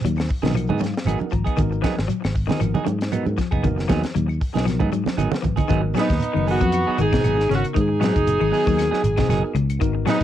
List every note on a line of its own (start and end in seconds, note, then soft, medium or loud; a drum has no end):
0.01 0.27 D#2 medium
0.01 0.26 F#3 medium
0.01 shekere medium
0.06 closed hi-hat medium
0.16 muted clean electric guitar stroke soft
0.16 claves medium
0.16 shekere soft
0.20 snare medium
0.28 muted clean electric guitar stroke soft
0.28 kick medium
0.28 open hi-hat medium
0.28 shekere medium
0.41 0.66 B1 medium
0.41 0.53 D#3 medium
0.41 0.72 B3 medium
0.41 0.54 B3 soft
0.41 0.54 D#4 soft
0.41 0.73 D#4 medium
0.41 0.73 F#4 medium
0.41 0.54 G#4 medium
0.41 0.73 A#4 medium
0.41 closed hi-hat medium
0.41 high conga medium
0.41 shekere soft
0.46 snare medium
0.53 0.77 F3 medium
0.53 muted clean electric guitar stroke soft
0.53 claves medium
0.53 shekere medium
0.57 closed hi-hat medium
0.67 0.92 G#2 medium
0.67 0.79 F#3 medium
0.67 0.82 B3 medium
0.67 0.80 D#4 medium
0.67 0.80 G#4 medium
0.67 high conga medium
0.67 low conga medium
0.67 shekere soft
0.79 1.02 F#3 medium
0.79 1.05 F5 medium
0.79 muted clean electric guitar stroke soft
0.79 high conga medium
0.79 shekere medium
0.84 snare soft
0.84 closed hi-hat medium
0.93 shekere soft
0.97 snare medium
1.05 1.19 G#1 loud
1.05 1.21 F#3 medium
1.05 1.19 B3 medium
1.05 1.31 B3 medium
1.05 1.19 D#4 medium
1.05 1.31 D#4 medium
1.05 1.31 F#4 medium
1.05 1.19 G#4 medium
1.05 1.31 A#4 medium
1.05 1.32 F#5 medium
1.05 closed hi-hat medium
1.05 high conga medium
1.05 claves medium
1.05 shekere medium
1.18 muted clean electric guitar stroke soft
1.18 high conga medium
1.18 shekere soft
1.30 1.45 G#1 medium
1.30 1.54 F3 medium
1.30 1.57 A#5 medium
1.30 muted clean electric guitar stroke soft
1.30 kick medium
1.30 closed hi-hat soft
1.30 shekere medium
1.45 1.61 B3 soft
1.45 1.61 D#4 medium
1.45 1.60 G#4 medium
1.45 kick medium
1.45 closed hi-hat soft
1.45 claves medium
1.45 shekere soft
1.57 1.82 G#1 medium
1.57 1.79 D#3 medium
1.57 2.00 B3 medium
1.57 2.00 D#4 medium
1.57 2.01 F#4 medium
1.57 2.01 A#4 medium
1.57 kick medium
1.57 closed hi-hat medium
1.57 low conga medium
1.57 shekere medium
1.72 muted clean electric guitar stroke soft
1.72 shekere soft
1.82 2.04 F3 medium
1.82 1.97 F#3 medium
1.82 1.96 B3 medium
1.82 1.96 D#4 medium
1.82 1.96 G#4 medium
1.82 kick medium
1.82 snare medium
1.82 closed hi-hat soft
1.82 high conga medium
1.82 claves medium
1.82 shekere medium
1.97 2.09 G#1 medium
1.97 muted clean electric guitar stroke soft
1.97 snare medium
1.97 shekere soft
2.08 2.30 F#3 medium
2.08 closed hi-hat medium
2.08 shekere medium
2.22 2.47 G#1 medium
2.22 muted clean electric guitar stroke soft
2.22 snare medium
2.22 claves medium
2.22 shekere soft
2.34 muted clean electric guitar stroke soft
2.34 kick medium
2.34 open hi-hat medium
2.34 shekere medium
2.47 2.58 D#3 medium
2.47 2.78 B3 medium
2.47 2.61 D#4 medium
2.47 2.79 D#4 medium
2.47 2.79 F#4 medium
2.47 2.61 G#4 medium
2.47 2.79 A#4 medium
2.47 snare medium
2.47 closed hi-hat soft
2.47 high conga medium
2.47 low conga medium
2.47 shekere soft
2.60 2.74 G#1 medium
2.60 2.82 F3 medium
2.60 muted clean electric guitar stroke soft
2.60 closed hi-hat medium
2.60 claves medium
2.60 shekere medium
2.74 2.85 F#3 medium
2.74 2.86 D#4 medium
2.74 2.86 G#4 medium
2.74 high conga medium
2.74 low conga medium
2.74 shekere soft
2.84 3.22 G#2 medium
2.84 3.07 F#3 medium
2.84 muted clean electric guitar stroke soft
2.84 closed hi-hat soft
2.84 high conga medium
2.84 shekere medium
3.01 snare medium
3.01 closed hi-hat medium
3.01 shekere soft
3.11 3.26 F#3 medium
3.11 3.36 B3 medium
3.11 3.25 B3 medium
3.11 3.36 D#4 medium
3.11 3.25 D#4 medium
3.11 3.37 F#4 medium
3.11 3.37 A#4 medium
3.11 muted clean electric guitar stroke medium
3.11 closed hi-hat medium
3.11 high conga medium
3.11 claves medium
3.11 shekere medium
3.26 3.37 G#2 medium
3.26 muted clean electric guitar stroke soft
3.26 high conga medium
3.26 shekere soft
3.37 3.59 F3 medium
3.37 muted clean electric guitar stroke soft
3.37 kick medium
3.37 snare soft
3.37 closed hi-hat medium
3.37 shekere medium
3.51 3.86 F#1 medium
3.51 3.67 B3 soft
3.51 3.67 D#4 medium
3.51 3.66 G#4 medium
3.51 kick medium
3.51 claves medium
3.51 shekere soft
3.63 3.85 D#3 medium
3.63 4.05 B3 medium
3.63 4.06 D#4 medium
3.63 4.06 F#4 medium
3.63 4.06 A#4 loud
3.63 kick medium
3.63 closed hi-hat medium
3.63 low conga medium
3.63 shekere medium
3.77 muted clean electric guitar stroke soft
3.77 snare soft
3.77 shekere soft
3.88 4.02 D#2 medium
3.88 4.10 F3 medium
3.88 4.03 F#3 medium
3.88 4.03 B3 medium
3.88 4.02 D#4 medium
3.88 4.02 G#4 medium
3.88 kick medium
3.88 snare medium
3.88 closed hi-hat medium
3.88 high conga medium
3.88 claves medium
3.88 shekere medium
4.03 muted clean electric guitar stroke soft
4.03 muted fingered electric bass stroke soft
4.03 snare medium
4.03 closed hi-hat medium
4.03 shekere soft
4.15 4.39 D#2 medium
4.15 4.36 F#3 medium
4.15 closed hi-hat medium
4.15 shekere medium
4.28 muted clean electric guitar stroke soft
4.28 claves medium
4.28 shekere soft
4.41 muted clean electric guitar stroke soft
4.41 muted fingered electric bass stroke soft
4.41 kick medium
4.41 open hi-hat medium
4.41 shekere medium
4.53 4.78 B1 medium
4.53 4.83 B3 medium
4.53 4.65 B3 soft
4.53 4.84 D#4 medium
4.53 4.65 D#4 soft
4.53 4.84 F#4 medium
4.53 4.66 G#4 medium
4.53 4.84 A#4 medium
4.53 closed hi-hat medium
4.53 high conga medium
4.53 shekere soft
4.57 snare medium
4.65 4.87 F3 medium
4.65 muted clean electric guitar stroke soft
4.65 snare soft
4.65 closed hi-hat medium
4.65 claves medium
4.65 shekere medium
4.79 5.04 G#2 medium
4.79 4.90 F#3 medium
4.79 4.90 B3 medium
4.79 4.90 D#4 medium
4.79 4.91 G#4 medium
4.79 kick medium
4.79 high conga medium
4.79 low conga medium
4.79 shekere soft
4.92 5.14 F#3 medium
4.92 closed hi-hat medium
4.92 high conga medium
4.92 shekere medium
5.06 snare medium
5.06 high conga medium
5.06 shekere soft
5.17 5.31 G#1 loud
5.17 5.32 F#3 medium
5.17 5.41 B3 medium
5.17 5.31 B3 medium
5.17 5.41 D#4 medium
5.17 5.31 D#4 medium
5.17 5.42 F#4 medium
5.17 5.30 G#4 medium
5.17 5.43 A#4 medium
5.17 5.66 B4 medium
5.17 closed hi-hat medium
5.17 low conga medium
5.17 claves medium
5.17 shekere medium
5.31 muted clean electric guitar stroke soft
5.31 muted fingered electric bass stroke soft
5.31 snare medium
5.31 low conga medium
5.31 shekere soft
5.42 5.57 G#1 medium
5.42 5.65 F3 medium
5.42 muted clean electric guitar stroke soft
5.42 kick medium
5.42 closed hi-hat medium
5.42 low conga medium
5.42 shekere medium
5.56 5.68 D#4 medium
5.56 5.68 G#4 medium
5.56 kick medium
5.56 closed hi-hat medium
5.56 low conga loud
5.56 claves medium
5.56 shekere soft
5.68 5.93 G#1 loud
5.68 5.90 D#3 medium
5.68 5.83 F#3 medium
5.68 5.99 B3 medium
5.68 5.82 B3 loud
5.68 5.99 D#4 medium
5.68 5.82 D#4 loud
5.68 5.99 F#4 medium
5.68 5.82 G#4 loud
5.68 6.00 A#4 medium
5.68 kick loud
5.68 closed hi-hat medium
5.68 shekere medium
5.83 muted clean electric guitar stroke soft
5.94 6.09 F#3 medium
5.94 6.16 F#3 medium
5.94 6.09 B3 medium
5.94 6.08 G#4 medium
5.94 snare medium
5.94 closed hi-hat medium
5.94 claves medium
5.94 shekere medium
5.99 6.45 B3 medium
5.99 6.45 D#4 medium
6.09 6.20 D#2 medium
6.09 muted clean electric guitar stroke soft
6.09 kick medium
6.09 snare soft
6.09 closed hi-hat medium
6.09 shekere medium
6.20 closed hi-hat medium
6.20 shekere medium
6.34 6.59 F#1 medium
6.34 6.56 D#3 medium
6.34 6.63 B3 medium
6.34 6.64 D#4 medium
6.34 6.64 F#4 medium
6.34 6.64 A#4 medium
6.34 muted clean electric guitar stroke soft
6.34 claves medium
6.47 6.61 F#3 medium
6.47 6.60 B3 medium
6.47 7.00 B3 medium
6.47 6.59 D#4 medium
6.47 6.96 F#4 loud
6.47 6.59 G#4 medium
6.47 open hi-hat medium
6.47 shekere soft
6.60 6.84 F2 loud
6.60 6.82 F#3 medium
6.60 muted clean electric guitar stroke soft
6.60 kick medium
6.60 closed hi-hat medium
6.60 shekere medium
6.72 muted clean electric guitar stroke soft
6.72 closed hi-hat medium
6.72 claves medium
6.72 shekere medium
6.87 6.97 F#3 medium
6.87 6.97 B3 medium
6.87 6.97 D#4 medium
6.87 6.97 G#4 medium
6.87 muted fingered electric bass stroke soft
6.98 7.22 G#1 loud
6.98 7.10 D#3 medium
6.98 7.21 B3 medium
6.98 7.22 D#4 medium
6.98 7.50 D#4 loud
6.98 7.22 F#4 medium
6.98 7.22 G#4 medium
6.98 7.51 G#4 loud
6.98 muted clean electric guitar stroke soft
6.98 closed hi-hat soft
6.98 shekere medium
7.12 7.34 B2 medium
7.12 7.23 B3 soft
7.12 7.23 D#4 medium
7.12 7.24 G#4 medium
7.12 kick medium
7.12 snare medium
7.12 closed hi-hat medium
7.12 shekere soft
7.24 7.48 G#1 loud
7.24 7.38 F#3 medium
7.24 7.38 B3 medium
7.24 7.37 D#4 medium
7.24 7.37 G#4 medium
7.24 closed hi-hat medium
7.24 claves medium
7.24 shekere medium
7.38 muted clean electric guitar stroke soft
7.38 snare soft
7.48 7.63 G#1 medium
7.48 7.71 C#3 medium
7.48 7.78 B3 medium
7.48 7.62 C#4 medium
7.48 7.79 D#4 medium
7.48 7.79 F#4 medium
7.48 7.79 A#4 medium
7.48 muted clean electric guitar stroke soft
7.48 closed hi-hat medium
7.48 shekere soft
7.52 7.65 F#4 medium
7.52 snare soft
7.64 closed hi-hat medium
7.64 claves medium
7.64 shekere soft
7.74 8.11 G#2 loud
7.74 7.96 D#3 medium
7.74 9.50 D#4 medium
7.74 kick medium
7.74 closed hi-hat medium
7.74 shekere medium
7.79 9.53 G#4 loud
7.89 muted clean electric guitar stroke soft
8.00 8.14 F#3 medium
8.00 8.22 F#3 medium
8.00 8.13 B3 medium
8.00 8.12 D#4 medium
8.00 8.12 G#4 medium
8.00 closed hi-hat medium
8.00 claves medium
8.00 shekere medium
8.04 snare medium
8.13 8.38 F#1 loud
8.13 8.37 B3 medium
8.13 8.38 D#4 medium
8.13 8.38 F#4 medium
8.13 8.38 G#4 medium
8.13 muted clean electric guitar stroke soft
8.13 kick medium
8.13 closed hi-hat medium
8.13 shekere medium
8.27 closed hi-hat medium
8.27 shekere medium
8.40 8.51 G#1 loud
8.40 8.62 D#3 medium
8.40 muted clean electric guitar stroke medium
8.40 claves medium
8.51 8.66 F#3 medium
8.51 8.65 B3 medium
8.51 8.65 D#4 medium
8.51 8.65 G#4 medium
8.51 open hi-hat medium
8.51 shekere soft
8.64 8.89 D#2 medium
8.64 8.88 F#3 medium
8.64 8.94 B3 medium
8.64 8.94 D#4 medium
8.64 8.94 F#4 medium
8.64 8.95 A#4 loud
8.64 muted clean electric guitar stroke medium
8.64 kick medium
8.64 shekere medium
8.77 muted clean electric guitar stroke soft
8.77 snare soft
8.77 closed hi-hat medium
8.77 claves medium
8.77 shekere medium
8.91 9.02 F#3 medium
8.91 9.02 B3 medium
8.91 9.02 D#4 medium
8.91 9.02 G#4 medium
8.91 muted fingered electric bass stroke soft
8.91 snare soft
9.03 9.26 G#1 medium
9.03 muted clean electric guitar stroke soft
9.03 closed hi-hat medium
9.03 shekere medium
9.17 9.39 B2 medium
9.17 9.28 B3 soft
9.17 9.28 D#4 medium
9.17 9.28 G#4 medium
9.17 kick medium
9.17 snare medium
9.17 closed hi-hat medium
9.17 shekere soft
9.27 9.41 F#1 loud
9.27 9.43 F#3 medium
9.27 9.52 B3 medium
9.27 9.52 D#4 medium
9.27 9.43 D#4 medium
9.27 9.52 F#4 medium
9.27 9.43 G#4 medium
9.27 9.53 A#4 loud
9.27 muted clean electric guitar stroke medium
9.27 snare soft
9.27 closed hi-hat medium
9.27 claves medium
9.27 shekere medium
9.44 muted clean electric guitar stroke medium
9.54 9.77 C#2 loud
9.54 9.76 C#3 medium
9.54 muted clean electric guitar stroke soft
9.54 closed hi-hat medium
9.54 shekere soft
9.69 closed hi-hat medium
9.69 claves medium
9.69 shekere soft
9.79 10.04 G#1 loud
9.79 10.02 D#3 loud
9.79 10.09 B3 medium
9.79 10.09 D#4 medium
9.79 10.09 F#4 medium
9.79 10.10 A#4 medium
9.79 kick loud
9.79 closed hi-hat medium
9.79 shekere medium
9.95 muted clean electric guitar stroke soft
10.06 10.20 F#3 medium
10.06 10.23 F#3 medium
10.06 10.19 B3 medium
10.06 10.23 B3 medium
10.06 10.23 D#4 loud
10.06 10.19 G#4 loud
10.06 muted clean electric guitar stroke medium
10.06 snare medium
10.06 closed hi-hat medium
10.06 claves medium
10.06 shekere medium
10.20 shekere medium